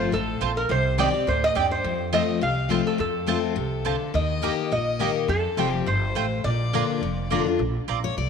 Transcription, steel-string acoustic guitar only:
0.00 0.11 F3 loud
0.00 0.11 A3 medium
0.00 0.11 C4 medium
0.00 0.12 F4 loud
0.12 0.40 A2 medium
0.41 0.69 A#2 medium
0.69 1.24 C3 medium
0.98 1.13 D#3 medium
0.98 1.13 G3 loud
0.98 1.13 C4 loud
0.98 1.12 G4 loud
1.13 1.28 C4 medium
1.13 1.26 G4 medium
1.27 1.54 A2 loud
1.55 1.83 G2 medium
1.85 2.39 F2 medium
2.13 2.40 F3 loud
2.13 2.41 A3 loud
2.13 2.41 C4 loud
2.13 2.41 F4 medium
2.41 2.96 C3 loud
2.69 2.97 F3 medium
2.69 2.98 A3 medium
2.69 2.98 C4 loud
2.69 2.98 F4 loud
2.98 3.54 F2 loud
3.27 3.55 F3 medium
3.27 3.55 A3 medium
3.27 3.55 C4 loud
3.27 3.56 F4 loud
3.56 3.84 C3 medium
3.86 4.13 D3 medium
4.14 4.41 D#3 loud
4.42 4.70 D#3 loud
4.42 4.70 A#3 loud
4.42 4.70 D#4 medium
4.42 4.71 G4 loud
4.72 5.27 A#2 medium
4.99 5.27 D#3 medium
4.99 5.28 A#3 medium
4.99 5.28 D#4 loud
4.99 5.29 G4 medium
5.29 5.84 F2 medium
5.57 5.85 F3 medium
5.57 5.86 G3 loud
5.57 5.86 C4 loud
5.57 5.86 G4 medium
5.86 6.14 G2 medium
6.16 6.43 A2 medium
6.44 6.99 A#2 medium
6.73 7.01 D3 medium
6.73 7.01 A#3 loud
6.73 7.02 D4 loud
6.73 7.02 F4 loud
7.03 7.57 F2 medium
7.31 7.45 D3 medium
7.31 7.46 A#3 medium
7.31 7.46 D4 medium
7.31 7.45 F4 medium
7.46 7.60 D4 soft
7.46 7.59 F4 soft
8.04 8.17 C#5 medium
8.18 8.29 D5 medium

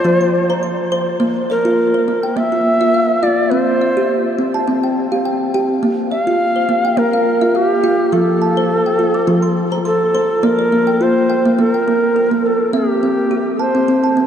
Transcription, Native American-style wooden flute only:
0.00 0.63 C5 medium
1.51 2.38 A#4 medium
2.37 3.25 E5 medium
3.23 3.52 D5 medium
3.50 4.38 C5 medium
6.11 6.99 F5 medium
6.98 7.58 A#4 medium
7.56 8.14 G4 medium
8.13 9.55 A4 medium
9.86 10.46 A4 medium
10.44 11.04 A#4 medium
11.02 11.61 C5 medium
11.60 12.47 A#4 medium
12.46 12.74 A4 medium
12.75 13.63 G4 medium
13.61 14.20 C5 medium

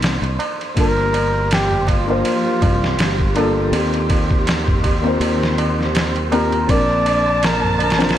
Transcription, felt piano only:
0.00 0.74 A#3 medium
0.00 0.76 D4 medium
0.00 0.78 D#4 medium
0.00 0.79 A#4 medium
0.74 2.02 A#3 medium
0.74 2.03 D4 medium
0.74 2.04 F4 medium
0.79 2.04 A#4 medium
2.06 3.31 A#3 medium
2.06 3.31 D4 medium
2.06 3.32 F4 medium
2.10 3.33 C5 loud
3.35 3.68 A#3 loud
3.35 3.69 D4 medium
3.35 3.69 F4 medium
3.35 3.70 A4 loud
3.71 4.99 A#3 medium
3.71 4.99 C4 medium
3.71 5.00 F4 medium
3.76 5.01 G4 medium
5.02 6.27 A#3 medium
5.02 6.28 C4 medium
5.02 6.28 F4 medium
5.07 6.29 C5 medium
6.32 6.65 A#3 medium
6.32 6.65 C4 medium
6.32 6.66 F4 medium
6.32 6.66 G4 loud
6.67 7.95 C4 medium
6.67 7.96 D4 medium
6.67 7.97 F4 medium
6.71 7.97 A#4 medium
7.99 8.18 C4 medium
7.99 8.18 D4 medium
7.99 8.18 F4 medium
8.03 8.18 C5 loud

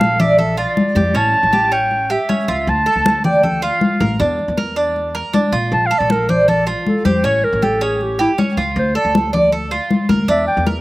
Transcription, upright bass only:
0.00 0.63 A#1 medium
0.95 1.14 F2 medium
1.14 1.33 A1 medium
1.43 2.16 A1 medium
2.48 2.66 C#2 medium
2.67 2.85 D2 medium
2.96 3.68 D2 medium
4.01 4.19 A1 loud
4.20 4.38 E2 loud
4.48 5.21 E2 medium
5.52 5.71 A#2 medium
5.72 5.90 A#1 medium
6.00 6.73 A#1 medium
7.05 7.23 F2 medium
7.24 7.42 A1 medium
7.53 8.25 A1 medium
8.57 8.75 C#2 medium
8.76 8.94 D2 loud
9.05 9.77 D2 medium
10.09 10.28 D2 medium
10.28 10.46 E2 medium
10.57 10.81 E2 medium

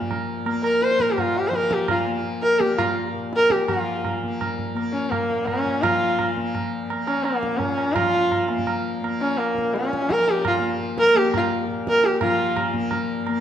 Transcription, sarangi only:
0.64 0.85 A#4 medium
0.83 1.02 C5 loud
1.01 1.13 A#4 medium
1.11 1.22 G4 medium
1.21 1.40 F4 medium
1.38 1.49 G4 medium
1.48 1.57 C5 medium
1.55 1.75 A#4 medium
1.73 1.90 G4 medium
1.91 2.07 F4 medium
2.42 2.61 A#4 medium
2.60 2.77 G4 medium
2.78 2.95 F4 medium
3.36 3.53 A#4 loud
3.51 3.68 G4 medium
3.68 4.18 F4 medium
4.92 5.12 C#4 medium
5.11 5.48 A#3 medium
5.46 5.84 C#4 medium
5.82 6.36 F4 medium
7.07 7.25 C#4 medium
7.23 7.59 A#3 medium
7.57 7.95 C#4 medium
7.93 8.49 F4 loud
9.21 9.39 C#4 medium
9.38 9.75 A#3 medium
9.74 10.13 C#4 medium
10.11 10.31 A#4 loud
10.30 10.46 G4 medium
10.47 10.63 F4 medium
10.99 11.18 A#4 loud
11.17 11.34 G4 loud
11.36 11.52 F4 medium
11.89 12.07 A#4 loud
12.05 12.21 G4 medium
12.22 12.71 F4 medium

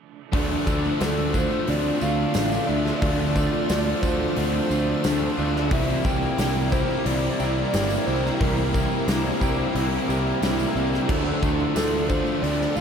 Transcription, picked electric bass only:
0.33 0.55 D2 medium
0.67 0.89 D2 medium
1.01 1.45 D2 loud
1.69 1.90 D2 medium
2.02 2.24 D2 medium
2.36 2.58 A1 loud
2.69 2.91 D2 medium
3.02 3.46 D2 loud
3.70 3.92 D2 medium
4.03 4.25 D2 medium
4.37 4.59 D2 medium
4.70 4.93 D2 loud
5.05 5.27 D2 loud
5.38 5.71 D2 medium
5.71 5.93 C2 medium
6.05 6.27 C2 medium
6.39 6.83 C2 loud
7.06 7.28 C2 loud
7.40 7.62 C2 medium
7.74 7.96 G1 medium
8.08 8.30 C2 medium
8.41 8.85 C2 medium
9.08 9.30 C2 medium
9.41 9.64 C2 medium
9.75 9.97 C2 medium
10.09 10.31 C2 loud
10.42 10.64 C2 medium
10.76 10.98 C2 medium
11.09 11.31 D2 medium
11.43 11.65 D2 medium
11.76 12.20 D2 loud
12.43 12.65 D2 medium
12.77 12.81 D2 medium

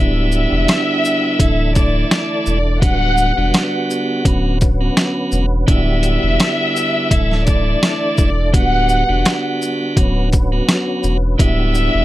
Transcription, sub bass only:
0.00 0.46 D1 loud
0.52 0.66 E1 medium
1.40 2.04 D1 loud
2.47 2.84 E1 medium
2.82 3.32 D1 loud
3.38 3.52 E1 medium
4.25 4.89 D1 loud
5.32 5.65 E1 medium
5.68 6.18 D1 loud
6.23 6.38 E1 loud
7.11 7.75 D1 loud
8.18 8.55 E1 medium
8.54 9.03 D1 loud
9.09 9.24 E1 medium
9.97 10.61 D1 loud
11.04 11.36 E1 medium
11.39 11.89 D1 loud
11.95 12.05 E1 loud

